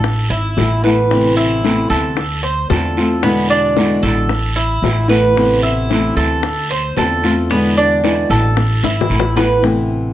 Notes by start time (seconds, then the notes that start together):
Already playing: A1 A4
0.04 muted nylon-string guitar stroke, high bongo, long guiro
0.30 G#1 E4
0.57 A1 E3 A3 B3 E4, high bongo, low bongo, short guiro
0.84 E3 A3 B3 E4 B4, high bongo, short guiro
1.10 C3 E3 A3 B3 E4, high bongo, long guiro
1.37 E4, high bongo
1.63 C3 E3 A3 B3 E4, high bongo, short guiro
1.90 D2 A4, high bongo, short guiro
2.17 muted nylon-string guitar stroke, high bongo, long guiro
2.43 C5
2.70 E2 D3 A3 C4 F4 A4, high bongo, low bongo, short guiro
2.97 A3 C4 F4, high bongo, short guiro
3.23 B2 D3 G#3 B3 E4, high bongo, long guiro
3.50 D4, high bongo
3.76 B2 D3 G#3 B3 E4, high bongo, short guiro
4.03 A1 A4, high bongo, short guiro
4.29 muted nylon-string guitar stroke, high bongo, long guiro
4.56 E4
4.82 A1 E3 A3 B3 E4, high bongo, low bongo, short guiro
5.08 E3 A3 B3 E4 B4, high bongo, short guiro
5.36 C3 E3 A3 B3 E4, high bongo, long guiro
5.63 E4, high bongo
5.89 C3 E3 A3 B3 E4, high bongo, short guiro
6.16 D2 A4, high bongo, short guiro
6.43 muted nylon-string guitar stroke, high bongo, long guiro
6.71 C5
6.97 E2 D3 A3 C4 F4 A4, high bongo, low bongo, short guiro
7.23 A3 C4 F4, high bongo, short guiro
7.50 B2 D3 G#3 B3 E4, high bongo, long guiro
7.77 D4, high bongo
8.03 B2 D3 G#3 B3 E4, high bongo, short guiro
8.30 A1 A4, high bongo, short guiro
8.56 muted nylon-string guitar stroke, high bongo, long guiro
8.83 G#1 E4, high bongo
9.01 low bongo
9.09 A1 E3 A3 B3 E4, short guiro
9.20 low bongo
9.36 E3 A3 B3 E4 B4, low bongo, short guiro
9.62 C3 E3 A3 B3 E4, high bongo
9.90 high bongo